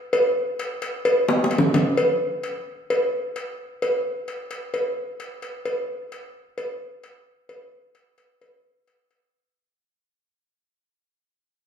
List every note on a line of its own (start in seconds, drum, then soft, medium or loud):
0.13 cowbell loud
0.59 cowbell medium
0.82 cowbell medium
1.05 cowbell loud
1.28 high bongo loud
1.44 high bongo medium
1.51 cowbell medium
1.58 low bongo medium
1.74 cowbell medium
1.74 low bongo medium
1.97 cowbell loud
2.43 cowbell medium
2.90 cowbell loud
3.36 cowbell medium
3.82 cowbell loud
4.28 cowbell medium
4.51 cowbell medium
4.74 cowbell loud
5.20 cowbell medium
5.42 cowbell medium
5.65 cowbell loud
6.12 cowbell medium
6.58 cowbell loud
7.04 cowbell medium
7.49 cowbell loud
7.95 cowbell medium
8.18 cowbell medium
8.41 cowbell loud
8.88 cowbell medium
9.11 cowbell medium